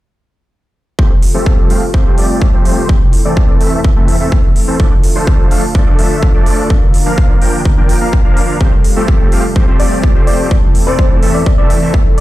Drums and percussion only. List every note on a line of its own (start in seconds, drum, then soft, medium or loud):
0.99 kick loud
1.23 open hi-hat loud
1.46 kick loud
1.70 open hi-hat medium
1.94 kick loud
2.18 open hi-hat loud
2.42 kick loud
2.65 open hi-hat medium
2.89 kick loud
3.13 open hi-hat loud
3.37 kick loud
3.61 open hi-hat medium
3.84 kick loud
4.08 open hi-hat loud
4.32 kick loud
4.56 open hi-hat medium
4.80 kick loud
5.03 open hi-hat loud
5.27 kick loud
5.51 open hi-hat medium
5.75 kick loud
5.99 open hi-hat loud
6.23 kick loud
6.46 open hi-hat medium
6.70 kick loud
6.94 open hi-hat loud
7.18 kick loud
7.42 open hi-hat medium
7.65 kick loud
7.89 open hi-hat loud
8.13 kick loud
8.37 open hi-hat medium
8.61 kick loud
8.84 open hi-hat loud
9.08 kick loud
9.32 open hi-hat medium
9.56 kick loud
9.80 open hi-hat loud
10.04 kick loud
10.27 open hi-hat medium
10.51 kick loud
10.75 open hi-hat medium
10.99 kick loud
11.23 open hi-hat medium
11.46 kick loud
11.70 open hi-hat loud
11.94 kick loud